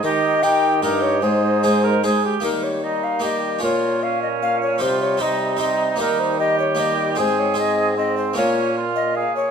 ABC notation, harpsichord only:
X:1
M:3/4
L:1/8
Q:1/4=152
K:Ebmix
V:1 name="Harpsichord"
z2 [EB]2 [EB]2 | z2 [A,EA]2 [A,EA]2 | [B,EG]4 [B,EG]2 | [DFB]6 |
[CEG]2 [CEG]2 [CEG]2 | [B,EG]4 [B,EG]2 | [CA]2 [CA]4 | [B,DF]6 |]
V:2 name="Harpsichord" clef=bass
E,4 G,,2 | A,,4- A,, z | E,6 | B,,6 |
C,6 | E,6 | A,,6 | B,,4- B,, z |]